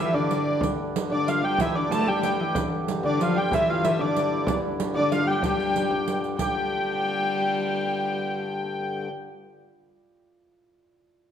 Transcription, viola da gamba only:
0.00 0.16 E3 medium
0.15 0.62 D3 medium
1.11 1.44 D3 medium
1.43 1.61 G3 medium
1.59 1.78 E3 medium
1.77 1.91 D3 medium
1.91 2.09 A3 medium
2.08 2.41 G3 medium
2.40 2.56 E3 medium
3.04 3.21 D3 medium
3.20 3.37 F3 medium
3.36 3.52 G3 medium
3.53 3.82 E3 medium
3.83 4.01 E3 medium
4.00 4.48 D3 medium
4.96 5.25 D3 medium
5.27 5.42 G3 medium
5.43 6.19 G3 medium
6.39 9.06 G3 medium

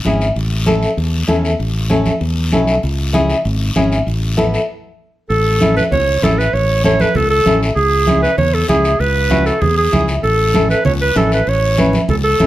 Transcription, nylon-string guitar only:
0.05 0.27 C#4 medium
0.05 0.27 E4 medium
0.05 0.27 G#4 medium
0.66 0.88 C#4 medium
0.66 0.88 E4 medium
0.66 0.88 A4 medium
1.27 1.50 C#4 medium
1.27 1.50 E4 medium
1.27 1.50 A4 medium
1.90 2.12 C#4 medium
1.90 2.12 E4 medium
1.90 2.12 A4 medium
2.52 2.74 C#4 medium
2.52 2.74 E4 medium
2.52 2.74 A4 medium
3.13 3.35 C#4 medium
3.13 3.35 E4 medium
3.13 3.35 G#4 medium
3.76 3.97 C#4 medium
3.76 3.97 E4 medium
3.76 3.97 G#4 medium
4.37 4.59 B3 medium
4.37 4.59 E4 medium
4.37 4.59 A4 medium
5.61 5.83 C#4 medium
5.61 5.83 E4 medium
5.61 5.83 A4 medium
6.22 6.44 C#4 medium
6.22 6.44 E4 medium
6.22 6.45 G#4 medium
6.84 7.06 C#4 medium
6.84 7.06 E4 medium
6.84 7.06 A4 medium
7.46 7.67 C#4 medium
7.46 7.68 E4 medium
7.46 7.68 A4 medium
8.07 8.29 C#4 medium
8.07 8.29 E4 medium
8.07 8.29 G#4 medium
8.68 8.90 C#4 medium
8.68 8.91 E4 medium
8.68 8.91 G#4 medium
9.30 9.52 C#4 medium
9.30 9.52 E4 medium
9.30 9.52 F#4 medium
9.92 10.14 C#4 medium
9.92 10.14 E4 medium
9.92 10.14 G#4 medium
10.54 10.76 C#4 medium
10.54 10.76 E4 medium
10.54 10.76 A4 medium
11.15 11.37 C#4 medium
11.15 11.37 E4 medium
11.15 11.38 A4 medium
11.78 11.99 C#4 medium
11.78 12.00 E4 medium
11.78 12.00 B4 medium
12.40 12.47 C#4 medium
12.40 12.47 E4 medium
12.40 12.47 A4 medium

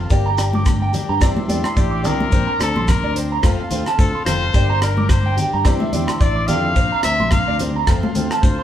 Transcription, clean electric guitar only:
0.11 0.22 D5 medium
0.26 0.35 A#5 medium
0.38 0.49 D5 medium
0.55 0.63 D6 medium
0.82 0.91 G5 medium
0.95 muted clean electric guitar stroke medium
1.09 1.18 A#5 medium
1.22 1.32 D5 medium
1.37 muted clean electric guitar stroke medium
1.49 1.60 D5 medium
1.64 1.73 C6 medium
1.77 1.88 D5 medium
1.91 2.00 D6 medium
2.04 2.15 D5 medium
2.33 2.43 C5 medium
2.47 2.56 A#5 medium
2.60 2.71 C5 medium
2.77 2.85 C6 medium
3.04 3.13 D5 medium
3.17 3.27 C5 medium
3.32 3.41 A#5 medium
3.45 3.55 C5 medium
3.60 3.68 F5 medium
3.72 3.82 C5 medium
3.88 3.96 A5 medium
4.00 4.10 C5 medium
4.15 4.24 C6 medium
4.28 4.38 C5 medium
4.56 4.66 D5 medium
4.70 4.79 A#5 medium
4.83 4.93 D5 medium
4.98 5.06 D6 medium
5.26 5.35 G5 medium
5.38 5.48 G5 medium
5.54 5.62 A#5 medium
5.66 5.77 D5 medium
5.80 5.89 E5 medium
5.93 6.04 D5 medium
6.07 6.17 C6 medium
6.21 6.31 D5 medium
6.36 6.45 D6 medium
6.48 6.59 D5 medium
6.77 6.87 C5 medium
6.92 7.01 A#5 medium
7.04 7.15 C5 medium
7.20 7.29 C6 medium
7.48 7.57 D5 medium
7.61 7.71 C5 medium
7.76 7.85 A#5 medium
7.89 7.99 C5 medium
8.04 8.13 F5 medium
8.17 8.27 C5 medium
8.32 8.41 A5 medium
8.44 8.55 C5 medium
8.59 8.63 C6 medium

